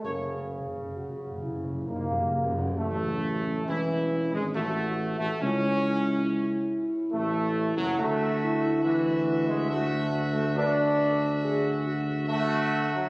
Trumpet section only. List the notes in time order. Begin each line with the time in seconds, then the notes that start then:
0.05 C#5
2.79 A3
3.68 E4
4.33 G#3
4.54 A3
5.19 A3
5.41 C#4
7.12 A3
7.77 F#3
7.98 F#4 E5
8.84 F#4 E5
9.70 F#4 E5
10.58 F#4 E5
12.28 F#4 E5